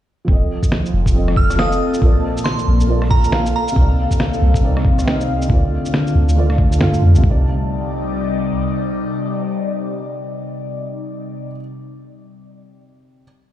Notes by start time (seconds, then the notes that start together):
0.24 F1 F3 C4 A4, kick
0.29 A4 D#5
0.63 C4, kick, shaker
0.72 snare
0.86 shaker
0.93 F1
1.06 A4 D#5, kick, shaker
1.12 F3 C4 A4
1.16 D#5
1.28 cross-stick
1.36 F6, kick
1.50 cross-stick, shaker
1.56 F3 C4 A4 F5 D#6, snare
1.72 shaker
1.94 A#2, shaker
2.00 A#1 A#2 A#3 F4, kick
2.06 D5
2.17 A#3
2.37 shaker
2.44 C6, snare
2.59 shaker
2.68 A#1
2.74 F4
2.80 F5, shaker
2.87 A#2 A#3 F4 D5
3.02 cross-stick
3.11 A#5, kick
3.24 shaker
3.30 A#2 A#3 F4 F5, snare
3.46 shaker
3.56 A#5
3.68 shaker
3.72 C3 C4
3.76 C2 C3 D#4 D5, kick
3.91 C4 D#4
4.11 kick, shaker
4.20 snare
4.33 shaker
4.42 C2
4.54 kick, shaker
4.61 C3 C4 D#4
4.65 D5
4.77 cross-stick
4.85 kick
4.99 cross-stick, shaker
5.05 C3 C4 D#4, snare
5.09 D#5
5.21 shaker
5.42 D3, shaker
5.49 D2 D3 A3 F4, kick
5.54 D5
5.85 shaker
5.94 snare
5.98 F4
6.07 shaker
6.11 A3
6.15 D2
6.29 shaker
6.35 D3 A3 F4 D5
6.50 cross-stick
6.58 kick
6.72 shaker
6.78 G2 D3 A3 F4, snare
6.82 F5
6.94 shaker
7.02 F2
7.15 C2 C3, shaker
7.22 C2 C3 G3, kick
7.26 D#4 D5
7.31 G3
7.39 D#4
7.44 D5